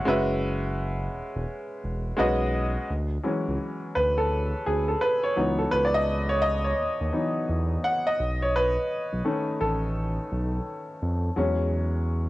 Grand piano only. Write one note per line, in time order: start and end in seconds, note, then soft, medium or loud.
0.05 1.22 G#3 medium
0.05 1.22 C#4 medium
0.05 1.23 F#4 medium
0.05 1.23 B4 medium
0.05 1.24 E5 medium
2.17 2.78 G#3 medium
2.17 2.78 C#4 medium
2.17 2.78 F#4 medium
2.17 2.79 B4 medium
2.17 2.79 D#5 medium
3.23 3.74 E3 medium
3.23 3.74 F#3 soft
3.23 3.74 G#3 soft
3.23 3.74 C#4 medium
3.95 4.18 B4 medium
4.18 4.62 A4 medium
4.66 4.88 G#4 medium
4.88 4.93 A4 medium
5.01 5.23 B4 medium
5.23 5.59 C#5 medium
5.36 7.11 E3 medium
5.36 7.11 F#3 soft
5.36 7.11 B3 medium
5.36 7.12 D#4 medium
5.58 5.71 A4 medium
5.71 5.85 B4 medium
5.85 5.93 D5 medium
5.94 6.30 D#5 loud
6.29 6.42 C#5 medium
6.42 6.64 D#5 loud
6.65 7.31 C#5 medium
7.12 7.44 E3 soft
7.12 7.44 F#3 soft
7.12 7.44 B3 soft
7.12 7.44 D#4 medium
7.84 8.06 F#5 medium
8.07 8.38 D#5 medium
8.42 8.54 C#5 medium
8.56 9.56 B4 medium
9.25 11.32 D#3 medium
9.25 11.32 A3 medium
9.25 11.32 C#4 medium
9.61 9.68 A4 medium
11.36 12.29 F#3 medium
11.36 12.29 G#3 soft
11.36 12.29 C#4 medium